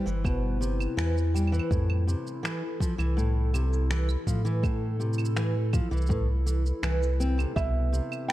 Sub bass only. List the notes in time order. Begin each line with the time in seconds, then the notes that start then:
0.07 G1
0.97 E2
1.71 F2
2.99 C2
4.27 A2
5.91 C2
6.83 C2
7.56 C2